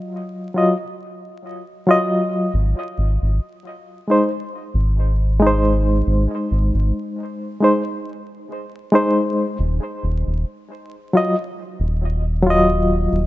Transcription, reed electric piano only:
0.00 0.49 F#3 medium
0.00 0.51 F4 medium
0.00 0.53 D#5 medium
0.54 0.75 F#3 medium
0.54 0.76 F4 medium
0.54 0.76 D#5 medium
1.87 2.50 F#3 medium
1.87 2.51 F4 medium
1.87 2.52 D#5 medium
4.08 4.28 G#3 medium
4.08 4.29 D#4 medium
4.08 4.30 C5 medium
5.39 7.55 G#3 medium
5.39 7.57 D#4 medium
5.47 7.59 C5 medium
7.60 7.81 G#3 medium
7.60 7.82 D#4 medium
7.60 7.83 C5 medium
8.92 9.56 G#3 medium
8.92 9.56 D#4 medium
8.92 9.57 C5 medium
11.13 11.34 F#3 medium
11.13 11.35 F4 medium
11.13 11.36 D#5 medium
12.43 13.27 F#3 medium
12.43 13.27 F4 medium
12.50 13.27 D#5 medium

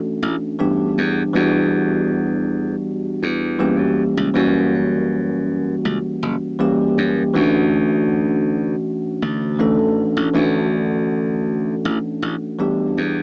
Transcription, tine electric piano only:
0.00 0.55 E3 medium
0.00 0.55 A3 medium
0.00 0.56 C#4 medium
0.00 0.56 D4 medium
0.00 0.57 F#4 medium
0.59 1.30 E3 medium
0.59 1.31 G3 medium
0.59 1.31 B3 medium
0.59 1.31 D4 medium
0.59 1.31 G4 medium
1.33 3.55 E3 medium
1.33 3.55 G3 medium
1.33 3.56 B3 medium
1.33 3.56 D4 medium
1.33 3.56 F#4 medium
3.59 4.30 E3 medium
3.59 4.31 G3 medium
3.59 4.31 A#3 medium
3.59 4.31 C#4 medium
3.59 4.31 G4 medium
4.34 6.55 E3 medium
4.34 6.56 G3 medium
4.34 6.56 A#3 medium
4.34 6.56 C#4 medium
4.34 6.57 F#4 medium
6.59 7.30 E3 medium
6.59 7.30 G3 medium
6.59 7.31 A#3 medium
6.59 7.31 C#4 medium
6.59 7.31 G4 medium
7.34 9.55 E3 medium
7.34 9.56 A3 medium
7.34 9.56 C#4 medium
7.34 9.56 D4 medium
7.34 9.57 F#4 medium
9.59 10.30 E3 medium
9.59 10.31 A3 medium
9.59 10.31 C#4 medium
9.59 10.31 D4 medium
9.59 10.31 A4 medium
10.34 12.55 E3 medium
10.34 12.55 A3 medium
10.34 12.56 C#4 medium
10.34 12.56 D4 medium
10.34 12.57 F#4 medium
12.59 13.23 E3 medium
12.59 13.23 G3 medium
12.59 13.23 B3 medium
12.59 13.23 D4 medium
12.59 13.23 G4 medium

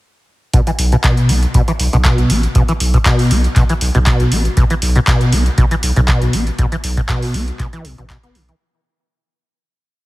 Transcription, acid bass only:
0.54 0.61 B2 medium
0.67 0.71 E3 loud
0.92 0.96 B2 medium
1.04 1.31 B2 loud
1.29 1.40 B3 medium
1.54 1.62 B2 loud
1.68 1.72 E3 loud
1.93 1.97 B2 medium
2.05 2.32 B2 medium
2.30 2.41 B3 loud
2.55 2.63 B2 medium
2.69 2.73 E3 loud
2.94 2.98 B2 loud
3.06 3.32 B2 loud
3.31 3.42 B3 loud
3.56 3.63 B2 loud
3.70 3.73 E3 loud
3.95 3.99 B2 loud
4.07 4.33 B2 loud
4.32 4.43 B3 loud
4.57 4.64 B2 medium
4.71 4.74 E3 loud
4.96 5.00 B2 loud
5.07 5.34 B2 loud
5.33 5.44 B3 loud
5.58 5.65 B2 loud
5.71 5.75 E3 medium
5.96 6.00 B2 medium
6.08 6.35 B2 loud
6.33 6.45 B3 loud
6.59 6.66 B2 loud
6.72 6.76 E3 loud
6.97 7.01 B2 loud
7.09 7.36 B2 loud
7.34 7.45 B3 medium
7.59 7.67 B2 loud
7.73 7.86 E3 loud
7.85 7.96 B2 medium
7.98 8.05 B2 medium
8.10 8.17 B2 loud
8.23 8.37 B3 medium
8.35 8.43 D3 medium
8.49 8.55 E3 medium

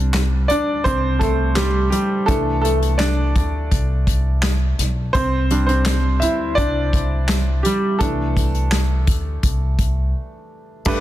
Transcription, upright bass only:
0.00 0.46 C2 medium
0.49 0.83 D2 medium
0.85 1.89 C2 medium
2.28 3.32 C2 medium
3.36 3.69 D2 medium
3.71 4.75 C2 medium
4.79 5.12 B1 medium
5.15 6.18 C2 medium
6.22 6.55 D2 medium
6.58 7.61 C2 medium
8.01 9.07 C2 medium
9.07 9.41 D2 medium
9.43 10.11 C2 medium
10.86 11.00 G1 loud

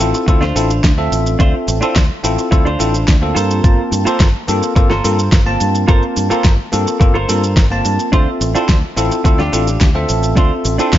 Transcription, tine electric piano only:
0.00 0.24 C4 medium
0.00 0.24 E4 medium
0.00 0.24 F4 medium
0.00 0.25 A4 medium
0.28 0.42 C4 medium
0.28 0.42 E4 medium
0.28 0.42 F4 medium
0.28 0.43 A4 medium
0.55 0.70 C4 medium
0.55 0.70 E4 medium
0.55 0.70 F4 medium
0.55 0.70 A4 medium
0.98 1.36 C4 medium
0.98 1.37 F4 medium
0.98 1.37 A4 medium
0.98 1.37 E5 medium
1.40 1.79 C4 medium
1.40 1.79 F4 medium
1.40 1.79 A4 medium
1.40 1.79 E5 medium
1.82 1.96 C4 medium
1.82 1.96 E4 medium
1.82 1.96 F4 medium
1.82 1.96 A4 medium
2.23 2.48 C4 medium
2.23 2.49 E4 medium
2.23 2.49 F4 medium
2.23 2.49 A4 medium
2.51 2.66 C4 medium
2.51 2.66 E4 medium
2.51 2.66 F4 medium
2.51 2.66 A4 medium
2.79 2.94 C4 medium
2.79 2.94 E4 medium
2.79 2.94 F4 medium
2.79 2.94 A4 medium
3.21 3.60 A#3 medium
3.21 3.61 C4 medium
3.21 3.61 F4 medium
3.21 3.61 A4 medium
3.64 4.03 A#3 medium
3.64 4.03 C4 medium
3.64 4.03 F4 medium
3.64 4.03 A5 medium
4.06 4.20 A#3 medium
4.06 4.20 C4 medium
4.06 4.20 F4 medium
4.06 4.21 A4 medium
4.48 4.73 A#3 medium
4.48 4.73 C4 medium
4.48 4.73 F4 medium
4.48 4.73 A4 medium
4.76 4.90 A#3 medium
4.76 4.91 C4 medium
4.76 4.91 F4 medium
4.76 4.91 A4 medium
5.04 5.18 A#3 medium
5.04 5.19 C4 medium
5.04 5.19 F4 medium
5.04 5.19 A4 medium
5.46 5.85 A#3 medium
5.46 5.85 C4 medium
5.46 5.85 F4 medium
5.46 5.85 A5 medium
5.87 6.27 A#3 medium
5.87 6.27 C4 medium
5.87 6.27 F4 medium
5.87 6.27 A5 medium
6.29 6.44 A#3 medium
6.29 6.44 C4 medium
6.29 6.44 F4 medium
6.29 6.45 A4 medium
6.72 6.97 A#3 medium
6.72 6.97 C4 medium
6.72 6.97 F4 medium
6.72 6.97 A4 medium
7.00 7.15 A#3 medium
7.00 7.15 C4 medium
7.00 7.15 F4 medium
7.00 7.15 A4 loud
7.28 7.43 A#3 medium
7.28 7.43 C4 medium
7.28 7.43 F4 medium
7.28 7.43 A4 medium
7.70 8.09 A#3 medium
7.70 8.10 C4 medium
7.70 8.10 F4 medium
7.70 8.10 A5 medium
8.12 8.51 C4 medium
8.12 8.52 F4 medium
8.12 8.52 A4 medium
8.12 8.52 E5 medium
8.55 8.69 C4 medium
8.55 8.69 E4 medium
8.55 8.69 F4 medium
8.55 8.69 A4 medium
8.96 9.21 C4 medium
8.96 9.22 E4 medium
8.96 9.22 F4 medium
8.96 9.22 A4 medium
9.25 9.39 C4 medium
9.25 9.39 E4 medium
9.25 9.39 F4 medium
9.25 9.40 A4 loud
9.52 9.67 C4 medium
9.52 9.67 E4 medium
9.52 9.67 F4 medium
9.52 9.67 A4 medium
9.95 10.34 C4 medium
9.95 10.34 F4 medium
9.95 10.34 A4 loud
9.95 10.34 E5 medium
10.36 10.76 C4 medium
10.36 10.76 F4 medium
10.36 10.76 A4 medium
10.36 10.76 E5 medium
10.79 10.93 C4 medium
10.79 10.93 E4 medium
10.79 10.93 F4 medium
10.79 10.94 A4 medium

